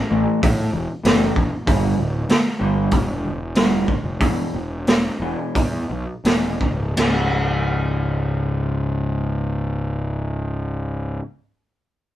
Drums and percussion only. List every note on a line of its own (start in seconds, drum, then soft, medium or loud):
0.43 kick loud
0.43 open hi-hat soft
1.05 snare medium
1.05 open hi-hat soft
1.36 kick medium
1.67 kick loud
1.67 open hi-hat soft
2.29 snare loud
2.29 open hi-hat soft
2.91 kick medium
2.91 open hi-hat soft
3.55 snare loud
3.55 open hi-hat soft
3.88 kick medium
4.20 kick medium
4.20 open hi-hat soft
4.87 snare loud
4.87 open hi-hat soft
5.55 kick medium
5.55 open hi-hat soft
6.25 snare medium
6.25 open hi-hat soft
6.61 kick medium
6.97 snare medium
6.97 crash medium